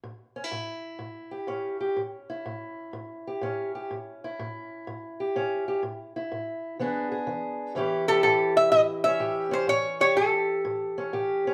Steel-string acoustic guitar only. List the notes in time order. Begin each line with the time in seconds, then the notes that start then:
0.03 A2
0.36 C#4
0.44 E4
0.52 A2
0.99 A2
1.31 G4
1.47 A2 C#4
1.81 G4
1.97 A2
2.30 E4
2.46 A2
2.93 A2
3.27 G4
3.41 A2 C#4
3.75 G4
3.91 A2
4.24 E4
4.39 A2
4.87 A2
5.20 G4
5.36 A2 C#4
5.68 G4
5.83 A2
6.16 E4
6.32 A2
6.79 E3 B3 D4 G#4
7.12 G#4
7.27 E3
7.75 A2 E3 C#4 E4 G4
8.09 G4
8.24 A2
8.72 A2
9.06 C#4
9.20 A2 G4
9.51 C#4
9.67 A2
10.00 G4
10.16 A2
10.65 A2
10.98 C#4
11.13 A2 G4
11.47 C#4